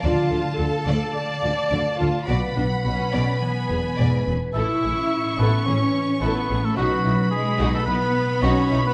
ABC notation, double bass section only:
X:1
M:4/4
L:1/8
Q:1/4=107
K:Emix
V:1 name="Double bass section" clef=bass
D,, D,, D,, D,, z D,, D,, D,, | B,,, B,,, B,,, B,,, z E,,, E,,, E,,, | [K:Alyd] A,,, A,,, z A,,, A,,, z A,,, A,,, | B,,, B,,, z B,,, B,,, z B,,, B,,, |]